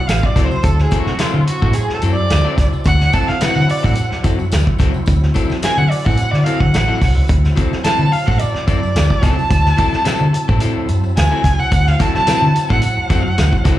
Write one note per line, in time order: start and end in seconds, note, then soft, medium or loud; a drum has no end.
0.00 13.79 F#3 medium
0.00 13.79 C4 medium
0.00 13.79 E4 medium
0.07 0.20 A1 medium
0.07 0.27 F5 medium
0.07 snare loud
0.07 closed hi-hat loud
0.07 tambourine medium
0.23 0.46 D5 medium
0.23 muted clean electric guitar stroke soft
0.23 kick medium
0.36 0.47 C#2 medium
0.36 0.56 F#3 medium
0.36 0.50 C4 loud
0.36 0.50 E4 medium
0.36 0.49 A4 loud
0.36 kick loud
0.36 snare soft
0.36 closed hi-hat medium
0.36 tambourine soft
0.44 0.65 C5 medium
0.51 muted clean electric guitar stroke soft
0.51 tambourine soft
0.63 0.85 D2 loud
0.63 0.82 A4 medium
0.63 kick loud
0.63 closed hi-hat medium
0.63 tambourine medium
0.79 1.00 G#4 medium
0.79 snare soft
0.79 tambourine soft
0.91 1.12 F#3 medium
0.91 1.12 C4 medium
0.91 1.12 E4 loud
0.91 1.12 A4 loud
0.91 kick medium
0.91 closed hi-hat medium
0.91 tambourine medium
1.00 1.21 F#4 medium
1.07 muted fingered electric bass stroke soft
1.07 snare soft
1.19 1.39 F#3 medium
1.19 1.40 C4 loud
1.19 1.40 E4 medium
1.19 1.47 F4 medium
1.19 1.40 A4 loud
1.19 muted fingered electric bass stroke soft
1.19 snare loud
1.19 closed hi-hat loud
1.19 tambourine medium
1.34 1.44 D3 loud
1.47 1.76 F#4 medium
1.47 muted clean electric guitar stroke soft
1.47 closed hi-hat medium
1.47 tambourine medium
1.62 1.72 A2 medium
1.62 1.74 F#3 soft
1.62 1.74 C4 medium
1.62 1.74 E4 medium
1.62 1.74 A4 medium
1.62 kick loud
1.73 1.93 G#4 loud
1.73 closed hi-hat medium
1.73 tambourine medium
1.89 muted fingered electric bass stroke soft
1.89 muted clean electric guitar stroke soft
1.89 snare soft
1.94 2.02 A4 medium
2.02 2.14 F#2 medium
2.02 2.23 F#3 medium
2.02 2.17 C4 medium
2.02 2.16 E4 medium
2.02 2.16 A4 medium
2.02 closed hi-hat medium
2.02 tambourine soft
2.12 2.64 D5 loud
2.17 muted clean electric guitar stroke soft
2.29 2.41 D2 loud
2.29 muted clean electric guitar stroke soft
2.29 snare loud
2.29 closed hi-hat medium
2.29 tambourine medium
2.44 2.56 F#3 medium
2.44 2.57 C4 medium
2.44 2.57 E4 medium
2.44 2.57 A4 medium
2.58 2.69 C#2 medium
2.58 muted clean electric guitar stroke soft
2.58 kick medium
2.58 snare soft
2.58 closed hi-hat medium
2.58 tambourine medium
2.73 muted clean electric guitar stroke soft
2.73 tambourine soft
2.84 3.07 D2 loud
2.84 3.15 F#5 loud
2.84 kick loud
2.84 closed hi-hat medium
2.84 tambourine medium
3.01 snare soft
3.01 tambourine soft
3.12 3.34 F#3 medium
3.12 3.34 C4 medium
3.12 3.34 E4 medium
3.12 3.34 A4 medium
3.12 3.30 A5 loud
3.12 kick loud
3.12 closed hi-hat medium
3.12 tambourine soft
3.28 3.43 F5 medium
3.28 muted fingered electric bass stroke soft
3.28 snare soft
3.41 3.62 F#3 medium
3.41 3.62 C4 medium
3.41 3.62 E4 medium
3.41 3.62 B4 loud
3.41 3.72 F#5 loud
3.41 muted fingered electric bass stroke medium
3.41 snare loud
3.41 closed hi-hat loud
3.41 tambourine medium
3.56 3.66 D3 loud
3.69 3.87 D5 loud
3.69 muted clean electric guitar stroke soft
3.69 open hi-hat medium
3.69 tambourine medium
3.83 3.94 A2 medium
3.83 3.95 F#3 soft
3.83 3.95 C4 medium
3.83 3.95 E4 medium
3.83 3.95 A4 medium
3.83 4.12 F#5 medium
3.83 kick medium
3.95 muted clean electric guitar stroke soft
3.95 closed hi-hat medium
3.95 tambourine medium
4.11 muted clean electric guitar stroke soft
4.11 muted fingered electric bass stroke soft
4.11 snare soft
4.23 4.36 F#2 medium
4.23 4.44 F#3 medium
4.23 4.38 C4 medium
4.23 4.38 E4 medium
4.23 4.37 A4 medium
4.23 kick loud
4.23 closed hi-hat medium
4.23 tambourine soft
4.39 muted clean electric guitar stroke medium
4.39 tambourine soft
4.52 4.63 D2 loud
4.52 snare loud
4.52 closed hi-hat loud
4.52 tambourine loud
4.66 muted clean electric guitar stroke medium
4.66 kick medium
4.79 4.91 C#2 medium
4.79 5.00 F#3 medium
4.79 4.93 C4 medium
4.79 4.93 E4 medium
4.79 4.92 A4 medium
4.79 kick loud
4.79 snare soft
4.79 closed hi-hat medium
4.79 tambourine medium
4.94 muted clean electric guitar stroke soft
4.94 tambourine soft
5.06 5.29 D2 loud
5.06 kick loud
5.06 closed hi-hat medium
5.06 tambourine medium
5.23 snare soft
5.34 5.55 F#3 medium
5.34 5.56 C4 medium
5.34 5.56 E4 medium
5.34 5.56 A4 medium
5.34 kick loud
5.34 closed hi-hat medium
5.34 tambourine medium
5.50 muted fingered electric bass stroke soft
5.50 snare soft
5.50 tambourine soft
5.62 5.83 F#3 medium
5.62 5.83 C4 medium
5.62 5.84 E4 medium
5.62 5.84 A4 medium
5.62 5.79 G#5 loud
5.62 muted fingered electric bass stroke medium
5.62 snare loud
5.62 closed hi-hat loud
5.62 tambourine loud
5.77 5.87 D3 loud
5.77 5.92 F#5 loud
5.90 6.07 D5 medium
5.90 muted clean electric guitar stroke soft
5.90 open hi-hat medium
5.90 tambourine medium
6.05 6.16 A2 medium
6.05 6.17 F#3 soft
6.05 6.17 C4 soft
6.05 6.18 E4 medium
6.05 6.18 A4 medium
6.05 6.33 F#5 loud
6.05 kick loud
6.17 muted clean electric guitar stroke soft
6.17 closed hi-hat medium
6.17 tambourine medium
6.31 6.43 D3 medium
6.31 6.46 D5 medium
6.31 muted clean electric guitar stroke soft
6.31 snare soft
6.44 6.66 F#3 medium
6.44 6.60 C4 medium
6.44 6.60 E4 medium
6.44 6.59 A4 medium
6.44 6.61 F5 medium
6.44 closed hi-hat medium
6.44 tambourine soft
6.60 6.71 D3 medium
6.60 7.16 F#5 medium
6.60 muted clean electric guitar stroke soft
6.60 kick loud
6.73 6.85 A1 medium
6.73 muted clean electric guitar stroke soft
6.73 snare loud
6.73 closed hi-hat loud
6.73 tambourine medium
6.88 7.00 F#3 medium
6.88 7.00 C4 medium
6.88 7.00 E4 medium
6.88 7.01 A4 medium
7.01 7.16 C2 loud
7.01 muted clean electric guitar stroke soft
7.01 kick medium
7.01 snare soft
7.01 open hi-hat medium
7.01 tambourine medium
7.15 7.26 C#2 medium
7.15 muted clean electric guitar stroke soft
7.28 7.50 D2 loud
7.28 kick loud
7.28 closed hi-hat medium
7.28 tambourine medium
7.44 snare soft
7.44 tambourine soft
7.56 7.77 F#3 medium
7.56 7.77 C4 medium
7.56 7.77 E4 medium
7.56 7.77 A4 medium
7.56 kick loud
7.56 closed hi-hat medium
7.56 tambourine medium
7.72 muted fingered electric bass stroke soft
7.72 snare soft
7.84 8.05 F#3 medium
7.84 8.05 C4 medium
7.84 8.05 E4 loud
7.84 8.05 B4 medium
7.84 8.14 A5 loud
7.84 muted fingered electric bass stroke soft
7.84 snare loud
7.84 closed hi-hat loud
7.84 tambourine medium
7.99 8.09 D3 loud
8.11 8.29 F5 loud
8.11 muted clean electric guitar stroke soft
8.11 open hi-hat medium
8.11 tambourine medium
8.26 8.37 A2 loud
8.26 8.38 F#3 soft
8.26 8.39 C4 medium
8.26 8.39 E4 medium
8.26 8.39 A4 medium
8.26 8.42 F#5 loud
8.26 kick loud
8.39 8.67 D5 medium
8.39 muted clean electric guitar stroke soft
8.39 closed hi-hat medium
8.39 tambourine medium
8.54 muted fingered electric bass stroke soft
8.54 muted clean electric guitar stroke soft
8.54 snare soft
8.67 8.79 F#2 medium
8.67 8.88 F#3 medium
8.67 8.81 C4 medium
8.67 8.81 E4 medium
8.67 8.80 A4 medium
8.67 9.25 D5 medium
8.67 kick loud
8.67 closed hi-hat medium
8.67 tambourine medium
8.81 muted clean electric guitar stroke soft
8.81 tambourine soft
8.95 9.06 D2 loud
8.95 snare loud
8.95 closed hi-hat loud
8.95 tambourine loud
9.09 muted clean electric guitar stroke soft
9.09 kick medium
9.22 9.34 C#2 medium
9.22 9.43 F#3 medium
9.22 9.36 C4 loud
9.22 9.36 E4 medium
9.22 9.36 A4 loud
9.22 10.61 A5 loud
9.22 kick loud
9.22 snare soft
9.22 closed hi-hat medium
9.22 tambourine medium
9.37 muted clean electric guitar stroke soft
9.37 tambourine soft
9.50 9.71 D2 loud
9.50 kick loud
9.50 closed hi-hat medium
9.50 tambourine medium
9.66 snare soft
9.66 tambourine soft
9.77 9.98 F#3 medium
9.77 9.98 C4 medium
9.77 9.98 E4 medium
9.77 9.99 A4 medium
9.77 kick loud
9.77 closed hi-hat medium
9.77 tambourine medium
9.93 muted fingered electric bass stroke soft
9.93 snare soft
9.93 tambourine soft
10.04 10.26 F#3 medium
10.04 10.26 C4 loud
10.04 10.26 E4 loud
10.04 10.26 A4 loud
10.04 muted fingered electric bass stroke medium
10.04 snare loud
10.04 closed hi-hat loud
10.04 tambourine loud
10.21 10.30 D3 loud
10.33 muted clean electric guitar stroke soft
10.33 closed hi-hat medium
10.33 tambourine medium
10.48 10.59 A2 medium
10.48 10.60 F#3 soft
10.48 10.60 C4 soft
10.48 10.60 E4 medium
10.48 10.61 A4 medium
10.48 kick loud
10.60 10.87 F#3 medium
10.60 10.87 C4 medium
10.60 10.87 E4 medium
10.60 10.87 A4 medium
10.60 closed hi-hat medium
10.60 tambourine medium
10.76 muted fingered electric bass stroke soft
10.89 11.00 F#2 medium
10.89 muted clean electric guitar stroke soft
10.89 closed hi-hat medium
10.89 tambourine medium
11.04 muted clean electric guitar stroke soft
11.04 tambourine soft
11.17 11.28 D2 loud
11.17 11.61 G#5 loud
11.17 muted clean electric guitar stroke soft
11.17 snare loud
11.17 closed hi-hat loud
11.17 tambourine medium
11.31 11.43 F#3 medium
11.31 11.43 C4 medium
11.31 11.43 E4 medium
11.31 11.43 A4 medium
11.44 11.55 C#2 medium
11.44 muted clean electric guitar stroke soft
11.44 kick medium
11.44 snare soft
11.44 closed hi-hat medium
11.44 tambourine medium
11.59 11.89 F#5 loud
11.59 muted clean electric guitar stroke medium
11.59 tambourine soft
11.71 11.93 D2 loud
11.71 kick loud
11.71 closed hi-hat medium
11.71 tambourine medium
11.87 12.03 F5 loud
11.87 snare soft
11.87 tambourine soft
11.99 12.20 F#3 loud
11.99 12.20 C4 medium
11.99 12.20 E4 medium
11.99 12.20 A4 medium
11.99 12.14 A5 loud
11.99 kick loud
11.99 closed hi-hat medium
11.99 tambourine medium
12.15 12.66 A5 loud
12.15 muted fingered electric bass stroke soft
12.15 snare soft
12.27 12.47 F#3 medium
12.27 12.47 C4 medium
12.27 12.48 E4 medium
12.27 12.48 B4 medium
12.27 muted fingered electric bass stroke medium
12.27 snare loud
12.27 closed hi-hat loud
12.27 tambourine loud
12.42 12.52 D3 loud
12.55 muted clean electric guitar stroke soft
12.55 closed hi-hat medium
12.55 tambourine medium
12.69 12.80 A2 medium
12.69 12.81 F#3 medium
12.69 12.82 C4 medium
12.69 12.82 E4 medium
12.69 12.82 A4 medium
12.69 13.79 F#5 medium
12.69 kick medium
12.82 muted clean electric guitar stroke soft
12.82 closed hi-hat medium
12.82 tambourine medium
12.97 muted clean electric guitar stroke soft
12.97 muted fingered electric bass stroke soft
13.10 13.21 F#2 loud
13.10 13.30 F#3 medium
13.10 13.23 C4 loud
13.10 13.23 E4 loud
13.10 13.23 A4 medium
13.10 kick loud
13.10 closed hi-hat medium
13.10 tambourine medium
13.24 muted clean electric guitar stroke medium
13.38 13.49 D2 loud
13.38 snare loud
13.38 closed hi-hat loud
13.38 tambourine medium
13.52 muted clean electric guitar stroke soft
13.52 kick medium
13.64 13.76 C#2 medium
13.64 13.79 F#3 medium
13.64 13.79 C4 medium
13.64 13.79 E4 loud
13.64 13.78 A4 loud
13.64 kick loud
13.64 snare soft
13.64 closed hi-hat medium
13.64 tambourine medium